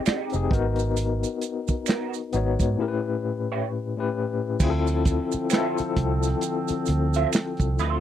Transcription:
Already playing: tine electric piano C4 D#4 G4 G#4
0.06 clean electric guitar G#3 D#4 G4, finger snap, muted fingered electric bass stroke, snare, closed hi-hat, maracas
0.09 finger snap
0.30 tine electric piano C4 D#4, closed hi-hat, maracas
0.34 fingered electric bass F1, tine electric piano G4 G#4
0.51 fingered electric bass G#1, tine electric piano B3 D#4 F#4 A#4, kick, closed hi-hat
0.76 closed hi-hat, maracas
0.97 closed hi-hat, maracas
1.23 closed hi-hat, maracas
1.41 closed hi-hat, maracas
1.68 muted fingered electric bass stroke, kick, closed hi-hat, maracas
1.86 clean electric guitar B3 F#4 A#4, finger snap, snare, closed hi-hat, maracas
1.90 finger snap
2.14 closed hi-hat, maracas
2.33 fingered electric bass G#1, tine electric piano B3 D#4 F#4 C#5, closed hi-hat, maracas
2.60 fingered electric bass G#2, kick, closed hi-hat, maracas
2.78 tine electric piano A2 C#4 E4 G4 A#4
2.88 tine electric piano B4
3.52 clean electric guitar E4 G4 C#5
3.97 tine electric piano A2 C#4 E4 G4 B4
4.59 fingered electric bass D2, woodwind section D3 F3 C4, tine electric piano C4 E4 F4, kick, crash, maracas
4.63 tine electric piano G#4
4.70 tine electric piano A4
4.87 closed hi-hat, maracas
5.05 kick, closed hi-hat, maracas
5.32 muted fingered electric bass stroke, closed hi-hat, maracas
5.50 tine electric piano C4 E4 F4, clean electric guitar F4 C5 E5, finger snap, snare, closed hi-hat, maracas
5.54 tine electric piano A4, finger snap
5.78 muted fingered electric bass stroke, closed hi-hat, maracas
5.96 fingered electric bass C2, kick, closed hi-hat
6.23 snare, closed hi-hat, maracas
6.41 closed hi-hat, maracas
6.68 muted fingered electric bass stroke, closed hi-hat, maracas
6.86 fingered electric bass D2, closed hi-hat, maracas
7.14 clean electric guitar F4 C5 E5, closed hi-hat, maracas
7.33 finger snap, muted clean electric guitar stroke, snare, closed hi-hat, maracas
7.36 finger snap
7.57 fingered electric bass C2, kick, closed hi-hat, maracas
7.79 fingered electric bass D2, clean electric guitar F4 C5 E5, closed hi-hat, maracas

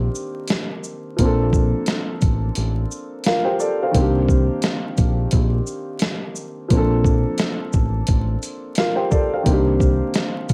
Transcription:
Already playing: grand piano D#3 A#3 C4 D4 G4
0.15 shaker
0.48 snare, closed hi-hat
0.84 shaker
1.16 fingered electric bass A#1, grand piano F3 A#3, kick, closed hi-hat
1.21 grand piano C4 D4
1.25 grand piano A4
1.53 kick, shaker
1.86 snare, closed hi-hat
2.22 fingered electric bass A1, kick, closed hi-hat, shaker
2.55 fingered electric bass A1, closed hi-hat
2.91 shaker
3.24 grand piano F4 A#4 F5, snare, closed hi-hat
3.45 grand piano G4 C5 G5
3.60 grand piano A4 D5, shaker
3.83 grand piano C5 F5
3.91 fingered electric bass C2, grand piano D#3 A#3, kick, closed hi-hat
3.96 grand piano C4 D4
4.00 grand piano G4
4.29 kick, shaker
4.62 snare, closed hi-hat
4.98 fingered electric bass A#1, kick, closed hi-hat, shaker
5.31 fingered electric bass A#1, kick, closed hi-hat
5.67 shaker
5.99 snare, closed hi-hat
6.36 shaker
6.68 fingered electric bass A#1, grand piano F3 A#3, kick, closed hi-hat
6.73 grand piano C4 D4
6.77 grand piano A4
7.04 kick, shaker
7.38 snare, closed hi-hat
7.73 fingered electric bass A1, kick, shaker
8.07 fingered electric bass A1, kick, closed hi-hat
8.43 closed hi-hat, shaker
8.75 grand piano F4 A#4 F5, snare, closed hi-hat
8.96 grand piano G4 C5 G5
9.11 grand piano A4 D5, kick, shaker
9.34 grand piano C5 F5
9.43 fingered electric bass C2, grand piano D#3 A#3, kick, closed hi-hat
9.47 grand piano C4 D4
9.52 grand piano G4
9.80 kick, shaker
10.14 snare, closed hi-hat
10.49 fingered electric bass A#1, kick, closed hi-hat, shaker

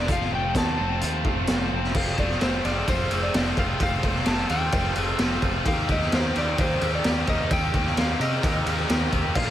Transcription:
Already playing: overdriven electric guitar F4, distorted electric guitar F4, electric slide guitar D5
0.07 picked electric bass F1, overdriven electric guitar F2 C3 F3 A3 C4 F4, tonewheel organ C4 F4 A4 C5, kick, closed hi-hat
0.12 electric slide guitar F5
0.21 snare
0.32 picked electric bass F1, distorted electric guitar A3, electric slide guitar G5
0.55 picked electric bass D#2, distorted electric guitar A3, electric slide guitar A5, kick, snare, closed hi-hat
0.77 picked electric bass F1, overdriven electric guitar F2 C3 F3 A3 C4 F4
1.01 picked electric bass D#2, distorted electric guitar F4, closed hi-hat
1.25 picked electric bass F1, distorted electric guitar A3, kick
1.47 picked electric bass F1, distorted electric guitar F4, snare, closed hi-hat
1.72 picked electric bass F1, distorted electric guitar C4
1.84 snare
1.94 picked electric bass F1, overdriven electric guitar F2 C3 F3 A3 C4 F4, tonewheel organ C4 F4 G4 A4, electric slide guitar F5, kick, crash
2.17 picked electric bass F1, overdriven electric guitar F2 C3 F3 A3 C4 F4, electric slide guitar D5, kick, ride
2.30 snare
2.40 picked electric bass F1, overdriven electric guitar F2 C3 F3 A3 C4 F4, electric slide guitar C5, snare, ride
2.63 picked electric bass F1, overdriven electric guitar F2 C3 F3 A3 C4 F4, electric slide guitar D5, snare, ride
2.86 picked electric bass F1, overdriven electric guitar F2 C3 F3 A3 C4 F4, electric slide guitar C5, kick, ride
3.10 picked electric bass F1, overdriven electric guitar F2 C3 F3 A3 C4 F4, ride
3.23 electric slide guitar D5
3.33 picked electric bass F1, overdriven electric guitar F2 C3 F3 A3 C4 F4, snare, ride
3.57 picked electric bass F1, overdriven electric guitar F2 C3 F3 A3 C4 F4, electric slide guitar F5, kick, ride
3.80 picked electric bass F1, overdriven electric guitar F2 C3 F3 A3 C4 F4, electric slide guitar F5, kick, ride
4.03 picked electric bass F1, overdriven electric guitar F2 C3 F3 A3 C4 F4, kick, ride
4.15 snare
4.26 picked electric bass F1, overdriven electric guitar F2 C3 F3 A3 C4 F4, electric slide guitar A5, snare, ride
4.49 picked electric bass D#2, overdriven electric guitar F2 C3 F3 A3 C4 F4, electric slide guitar G5, ride
4.72 picked electric bass F1, overdriven electric guitar F2 C3 F3 A3 C4 F4, kick, ride
4.96 picked electric bass F1, overdriven electric guitar F2 C3 F3 A3 C4 F4, ride
5.19 picked electric bass F1, overdriven electric guitar F2 C3 F3 A3 C4 F4, snare, ride
5.42 picked electric bass F1, overdriven electric guitar F2 C3 F3 A3 C4 F4, kick, ride
5.66 picked electric bass D#2, overdriven electric guitar D#3 A#3 D#4 G4, tonewheel organ C4 D#4 G4 A#4, electric slide guitar F5, kick, ride
5.89 picked electric bass D#2, overdriven electric guitar D#3 A#3 D#4 G4, electric slide guitar D#5, kick, ride
6.01 snare
6.12 picked electric bass D#2, overdriven electric guitar D#3 A#3 D#4 G4, electric slide guitar C5, snare, ride
6.36 picked electric bass D#2, overdriven electric guitar D#3 A#3 D#4 G4, electric slide guitar D5, snare, ride
6.58 picked electric bass D#2, overdriven electric guitar D#3 A#3 D#4 G4, electric slide guitar C5, kick, ride
6.81 picked electric bass D#2, overdriven electric guitar D#3 A#3 D#4 G4, ride
6.95 electric slide guitar D5
7.04 picked electric bass D#2, overdriven electric guitar D#3 A#3 D#4 G4, snare, ride
7.27 picked electric bass D#2, overdriven electric guitar D#3 A#3 D#4 G4, electric slide guitar D#5, kick, ride
7.51 picked electric bass D#2, overdriven electric guitar D#3 A#3 D#4 G4, electric slide guitar G5, kick, ride
7.74 picked electric bass D#2, overdriven electric guitar D#3 A#3 D#4 G4, kick, ride
7.86 snare
7.97 picked electric bass D#2, overdriven electric guitar D#3 A#3 D#4 G4, electric slide guitar F5, snare, ride
8.19 picked electric bass C3, overdriven electric guitar D#3 A#3 D#4 G4, electric slide guitar D#5, ride
8.42 picked electric bass D#2, overdriven electric guitar D#3 A#3 D#4 G4, kick, ride
8.66 picked electric bass D#2, overdriven electric guitar D#3 A#3 D#4 G4, ride
8.89 picked electric bass D#2, overdriven electric guitar D#3 A#3 D#4 G4, snare, ride
9.11 picked electric bass D#2, overdriven electric guitar D#3 A#3 D#4 G4, kick, ride
9.35 picked electric bass A#1, overdriven electric guitar A#2 F3 A#3 D4 F4, distorted electric guitar D3, tonewheel organ A#3 D4 F4 A#4, electric slide guitar F5, kick, crash

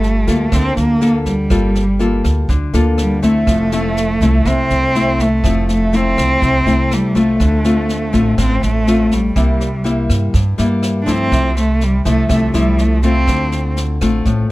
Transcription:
Already playing: upright bass G1, nylon-string guitar G3 F4 A4, cello A3
0.03 snare
0.27 upright bass D2, nylon-string guitar A#3 F4 A4, kick, snare
0.52 upright bass D2, nylon-string guitar D3, cello C4, kick, cross-stick, snare
0.77 upright bass D2, cello A#3, snare
1.01 nylon-string guitar A#3 F4 A4, snare
1.26 cello G3, kick, snare
1.50 upright bass G1, nylon-string guitar G3 A#3 F4 A4, kick, cross-stick, snare
1.75 snare
1.99 nylon-string guitar A#3 F4 A4, snare
2.24 upright bass D2, kick, cross-stick, snare
2.49 upright bass D2, nylon-string guitar D3, kick, snare
2.73 upright bass D2, nylon-string guitar A#3 F4 A4, snare
2.98 cello G3, cross-stick, snare
3.22 nylon-string guitar A3 C4 E4, cello A3, kick, snare
3.47 upright bass F1, nylon-string guitar F3, kick, cross-stick, snare
3.72 nylon-string guitar A3 C4 E4, snare
3.97 snare
4.21 upright bass C2, nylon-string guitar A3 C4 E4, kick, snare
4.45 upright bass C2, nylon-string guitar C3, cello C4, kick, cross-stick, snare
4.70 upright bass C2, snare
4.95 nylon-string guitar A3 C4 E4, snare
5.19 cello A3, kick, snare
5.44 upright bass F1, nylon-string guitar F3 A3 C4 E4, kick, cross-stick, snare
5.69 cello A3, snare
5.93 nylon-string guitar A3 C4 E4, cello C4, snare
6.17 upright bass C2, kick, cross-stick, snare
6.42 upright bass C2, nylon-string guitar C3, kick, snare
6.66 upright bass C2, nylon-string guitar A3 C4 E4, snare
6.91 cello G3, cross-stick, snare
7.15 nylon-string guitar A3 C4 F4, cello A3, kick, snare
7.40 upright bass D2, nylon-string guitar D3, kick, cross-stick, snare
7.64 nylon-string guitar A3 C4 F4, snare
7.89 snare
8.13 upright bass A1, nylon-string guitar A3 C4 F4, kick, snare
8.38 upright bass A1, nylon-string guitar A2, cello C4, kick, cross-stick, snare
8.63 upright bass A1, cello A3, snare
8.87 nylon-string guitar A3 C4 F4, snare
9.11 cello G3, kick, snare
9.36 upright bass C2, nylon-string guitar C3 G3 A#3 E4, kick, cross-stick, snare
9.61 snare
9.84 nylon-string guitar G3 A#3 E4, snare
10.09 upright bass G2, kick, cross-stick, snare
10.34 nylon-string guitar G2, upright bass G2, kick, snare
10.58 upright bass G2, nylon-string guitar G3 A#3 E4, snare
10.83 cross-stick, snare
11.02 cello D4
11.06 nylon-string guitar F3 A3 E4, kick, snare
11.11 cello C4
11.32 upright bass C2, nylon-string guitar C3, kick, cross-stick, snare
11.57 cello A3, snare
11.81 cello G3, snare
12.05 upright bass C2, nylon-string guitar F3 A3 E4, cello A3, kick, snare
12.29 upright bass C2, nylon-string guitar C3, cello A3, kick, cross-stick, snare
12.54 upright bass C2, nylon-string guitar F3 A3 E4, cello G3, snare
12.78 cello A3, snare
13.03 nylon-string guitar A3 C4 F4, cello C4, kick, snare
13.27 upright bass D2, nylon-string guitar D3, kick, cross-stick, snare
13.52 snare
13.77 snare
14.01 upright bass A1, nylon-string guitar A3 C4 F4, kick, cross-stick, snare
14.26 upright bass A1, nylon-string guitar A2, kick, snare

